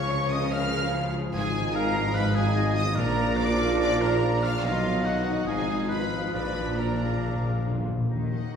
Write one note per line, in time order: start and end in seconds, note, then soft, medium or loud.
0.00 1.17 C#2 medium
0.00 1.34 C#2 medium
0.00 1.34 C#3 loud
0.00 1.36 C#3 medium
0.00 2.79 F3 medium
0.00 2.92 F3 medium
0.00 1.04 G#3 medium
0.00 1.13 C#4 medium
0.00 1.30 C#4 medium
0.00 1.34 C#4 medium
0.00 0.93 F4 medium
0.00 0.22 G#4 medium
0.00 0.30 C#5 loud
0.00 0.34 C#5 loud
0.00 0.12 F5 loud
0.00 0.30 C#6 loud
0.11 0.54 C#5 medium
0.30 0.54 D#5 loud
0.30 0.53 D#5 medium
0.30 0.51 F5 medium
0.30 0.52 D#6 loud
0.43 0.62 C#6 medium
0.51 0.95 A#4 loud
0.51 1.13 F5 loud
0.51 0.72 F5 medium
0.51 1.14 F5 loud
0.51 1.12 F6 loud
0.63 1.36 C#6 medium
0.84 2.98 G#4 medium
0.94 1.63 F4 medium
0.94 1.58 G#4 medium
1.05 1.23 G#3 medium
1.14 1.36 C#4 medium
1.24 2.98 G#3 medium
1.33 2.93 G#1 medium
1.33 2.97 G#1 loud
1.33 2.92 G#2 loud
1.33 2.98 G#2 medium
1.33 2.92 D#4 medium
1.33 2.79 D#4 loud
1.33 1.77 G#4 loud
1.33 1.71 G#4 loud
1.33 1.71 G#5 loud
1.45 2.75 D#3 medium
1.55 2.65 B3 medium
1.64 2.55 F4 medium
1.72 2.13 A#4 loud
1.72 2.16 A#4 loud
1.72 2.98 D#5 medium
1.72 2.28 F5 loud
1.72 2.15 A#5 loud
1.85 2.45 B4 medium
2.06 2.25 D#6 medium
2.14 2.35 B4 loud
2.14 2.36 B4 loud
2.14 2.35 F5 medium
2.14 2.35 B5 loud
2.26 2.99 D#6 medium
2.34 2.76 G#4 loud
2.34 2.75 G#4 loud
2.34 3.56 F5 medium
2.34 2.75 G#5 loud
2.47 2.99 B4 medium
2.56 3.26 F4 medium
2.56 2.98 D#5 loud
2.66 2.85 B3 medium
2.76 2.98 D#3 medium
2.76 2.96 D#5 loud
2.76 2.97 D#5 loud
2.76 2.96 D#6 loud
2.87 2.98 B3 medium
2.95 4.62 A#1 loud
2.95 4.63 A#1 loud
2.95 4.62 A#2 loud
2.95 3.54 A#2 loud
2.95 4.65 A#2 medium
2.95 4.59 F3 medium
2.95 4.60 F3 loud
2.95 4.59 D4 loud
2.95 4.60 D4 loud
2.95 3.38 A#4 loud
2.95 3.37 A#4 loud
2.95 3.37 D5 loud
2.95 3.37 A#5 loud
3.06 4.42 F3 medium
3.16 4.31 A#3 medium
3.37 4.20 A#4 loud
3.37 3.79 D5 loud
3.37 4.64 D5 medium
3.37 3.79 D5 loud
3.37 3.79 D6 loud
3.48 4.09 A#4 medium
3.57 3.79 F5 medium
3.80 4.03 D5 loud
3.80 4.00 D5 loud
3.80 3.99 F5 medium
3.80 4.00 D6 loud
3.90 4.64 D6 medium
4.01 4.42 A#4 loud
4.01 4.45 A#4 loud
4.01 4.42 A#5 loud
4.11 4.64 A#4 medium
4.21 4.65 F4 medium
4.21 4.65 D5 loud
4.33 4.53 A#3 medium
4.43 4.65 F3 medium
4.43 4.64 F5 loud
4.43 4.63 F5 loud
4.43 4.64 F6 loud
4.54 4.65 A#3 medium
4.63 5.44 B1 medium
4.63 5.44 B2 loud
4.63 5.48 B2 medium
4.63 5.43 D#3 medium
4.63 5.46 F#3 medium
4.63 6.34 D#4 loud
4.63 6.30 D#4 loud
4.63 5.04 F4 loud
4.63 5.07 F4 loud
4.63 5.46 D#5 loud
4.63 5.04 F5 loud
4.74 5.48 F#3 medium
4.85 5.67 B3 medium
4.94 6.35 D#4 medium
5.04 5.45 F#4 medium
5.04 5.46 F#4 medium
5.04 5.46 F#5 loud
5.15 5.99 B4 medium
5.36 6.21 D#6 medium
5.46 6.32 G#1 medium
5.46 6.32 G#2 medium
5.46 6.35 G#2 medium
5.46 7.88 F3 medium
5.46 7.85 F3 medium
5.46 5.89 G#4 medium
5.46 5.88 G#4 loud
5.46 6.33 F5 loud
5.46 5.88 G#5 loud
5.57 6.36 D#3 medium
5.68 6.35 B3 medium
5.78 6.65 F4 medium
5.89 6.32 B4 loud
5.89 6.33 B4 medium
5.89 6.35 D#5 medium
5.89 6.32 B5 loud
6.01 6.35 B4 medium
6.11 6.98 F5 medium
6.22 6.35 D#6 medium
6.32 7.86 A#1 medium
6.32 7.85 A#2 medium
6.32 8.11 A#2 medium
6.32 6.40 A#2 soft
6.32 7.84 D4 medium
6.32 7.85 D4 medium
6.32 6.77 B4 loud
6.32 7.85 D5 medium
6.32 6.77 B5 loud
6.42 6.48 A#2 soft
6.42 7.85 F3 medium
6.49 6.56 A#2 soft
6.55 6.64 A#2 soft
6.55 7.75 A#3 medium
6.65 6.71 A#2 medium
6.65 7.64 F4 medium
6.72 6.79 A#2 medium
6.77 6.87 A#2 medium
6.77 7.64 A#4 medium
6.77 7.65 A#4 medium
6.77 7.65 A#5 medium
6.88 6.94 A#2 medium
6.88 7.52 A#4 medium
6.96 7.02 A#2 medium
7.00 7.11 A#2 medium
7.00 7.20 F5 medium
7.10 7.18 A#2 medium
7.10 7.31 D6 medium
7.19 7.27 A#2 medium
7.19 7.42 F5 medium
7.28 7.34 A#2 medium
7.33 7.43 A#2 medium
7.33 8.11 D6 medium
7.43 7.50 A#2 medium
7.43 8.11 F5 medium
7.51 7.57 A#2 medium
7.51 8.56 A#4 medium
7.59 7.65 A#2 medium
7.65 7.72 A#2 loud
7.65 8.11 F4 medium
7.74 7.81 A#2 loud
7.74 7.96 A#3 medium
7.82 7.89 A#2 loud
7.87 7.97 A#2 loud
7.87 8.11 F3 medium
7.97 8.06 A#2 loud
7.97 8.50 A#3 medium
8.08 8.47 D#2 medium
8.08 8.56 D#3 medium
8.08 8.47 D#3 medium
8.08 8.56 F#3 medium
8.08 8.49 D#4 medium
8.08 8.56 D#4 medium
8.29 8.56 A#3 medium
8.29 8.56 D#4 soft
8.29 8.56 D#5 medium
8.29 8.56 F#5 medium
8.51 8.56 D#2 medium
8.51 8.56 D#3 medium
8.51 8.56 A#3 soft
8.51 8.56 F#4 medium